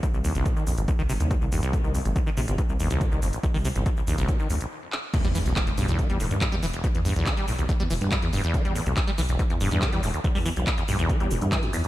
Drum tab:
CC |----------------|----------------|----------------|x---------------|
HH |x-oxx-oxx-oxx-ox|x-oxx-oxx-oxx-ox|xooxx-oxx-ox----|xxoxxxoxxxoxxxox|
SH |xxxxxxxxxxxxxxxx|xxxxxxxxxxxxxxxx|xxxxxxxxxxxx----|xxxxxxxxxxxxxxxx|
CP |----------------|----------------|--------------x-|----x-------x---|
BD |o---o---o---o---|o---o---o---o---|o---o---o-------|o---o---o---o---|

CC |----------------|----------------|----------------|
HH |xxoxxxoxxxoxxxox|xxoxxxoxxxoxxxox|xooxxxoxxxoxxxox|
SH |xxxxxxxxxxxxxxxx|xxxxxxxxxxxxxxxx|xxxxxxxxxxxxxxxx|
CP |----x-------x---|----x-------x---|----x-------x---|
BD |o---o---o---o---|o---o---o---o---|o---o---o---o---|